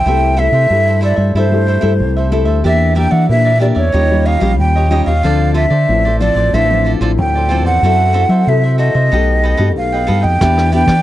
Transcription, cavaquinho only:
0.06 E4 A4 C5 E5
0.37 E4 A4 C5 E5
0.53 A4 C5 E5
0.88 A4 C5 E5
1.01 E4 A4 C5 E5
1.16 A4 C5 E5
1.35 E4 A4 C5 E5
1.67 E4 A4 C5 E5
1.81 E4 A4 C5 E5
2.17 A4 C5 E5
2.32 E4 A4 C5 E5
2.45 A4 C5 E5
2.64 G4 A#4 D5 E5
2.95 G4 A#4 D5 E5
3.11 A#4 D5 E5
3.45 A#4 D5 E5
3.59 G4 A#4 D5 E5
3.75 A#4 D5 E5
3.92 D#4 G4 C#5 D#5
4.25 D#4 G4 C#5 D#5
4.40 D#4 G4 C#5 D#5
4.76 G4 C#5 D#5
4.91 D#4 G4 C#5 D#5
5.06 G4 C#5 D#5
5.23 F4 A4 C5 D5
5.54 F4 A4 C5 D5
5.70 A4 C5 D5
6.05 A4 C5 D5
6.21 F4 A4 C5 D5
6.36 A4 C5 D5
6.54 F4 A4 C5 D5
6.85 F4 A4 C5 D5
7.01 F4 A4 C5 D5
7.35 A4 C5 D5
7.49 F4 A4 C5 D5
7.65 A4 C5 D5
7.83 F#4 A4 C5 E5
8.13 F#4 A4 C5 E5
8.29 A4 C5 E5
8.63 A4 C5 E5
8.78 F#4 A4 C5 E5
8.94 A4 C5 E5
9.12 A4 B4 D#5 G5
9.43 A4 B4 D#5 G5
9.57 A4 B4 D#5 G5
9.92 B4 D#5 G5
10.07 A4 B4 D#5 G5
10.22 B4 D#5 G5
10.41 E4 G4 B4 D5
10.72 E4 G4 B4 D5
10.87 G4 B4 D5

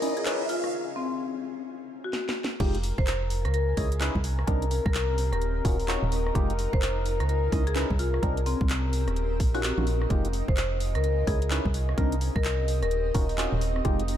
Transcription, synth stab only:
0.02 C#4 D#4 E4 D#5
0.26 C#4 D#4 E4 B4
2.60 G#3 D#4 F4 G4
3.77 C#4 D#4 E4 D#5
4.00 C#4 D#4 E4 B4
4.47 C4 D4 D#4 A#4
5.65 C#4 D#4 F4 F#4
5.88 C#4 D#4 F4 F#4
6.35 G#3 D#4 F4 G4
7.52 C#4 D#4 E4 D#5
7.76 C#4 D#4 E4 B4
8.23 C4 D4 D#4 A#4
9.54 C#4 D#4 F4 F#4
9.78 C#4 D#4 F4 F#4
10.10 G#3 D#4 F4 G4
11.27 C#4 D#4 E4 D#5
11.51 C#4 D#4 E4 B4
11.98 C4 D4 D#4 A#4
13.15 C#4 D#4 F4 F#4
13.38 C#4 D#4 F4 F#4
13.85 G#3 D#4 F4 G4

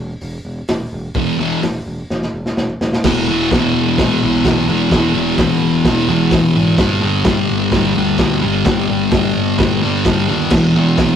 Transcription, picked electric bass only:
Already playing: E1
0.22 E1
0.45 E1
0.69 E1
0.92 E1
1.15 E1
1.39 E1
1.63 E1
1.86 E1
2.10 E1
2.34 E1
2.57 E1
2.81 E1
3.04 E1
3.28 E1
3.51 E1
3.73 E1
3.98 E1
4.21 B1
4.44 B1
4.69 E1
4.91 E1
5.15 E1
5.38 E1
5.62 E1
5.84 E1
6.08 E2
6.31 E1
6.55 G#1
6.77 G1
7.03 G1
7.24 G1
7.49 G1
7.71 G1
7.97 D2
8.18 D2
8.43 G1
8.65 G1
8.90 G1
9.11 G1
9.35 G1
9.58 G1
9.82 G2
10.04 G1
10.28 D#2
10.51 E1
10.75 E1
10.98 E1

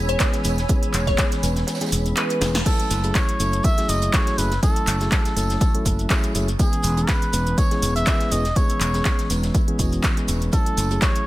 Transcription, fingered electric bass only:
Already playing: E1
0.45 E1
0.94 E1
1.43 E1
1.92 E1
2.41 E1
2.91 F#1
3.40 F#1
3.89 F#1
4.38 F#1
4.87 F#1
5.37 F#1
5.86 F#1
6.35 F#1
6.84 E1
7.33 E1
7.82 E1
8.32 E1
8.81 E1
9.30 E1
9.79 E1
10.28 E1
10.77 F#1

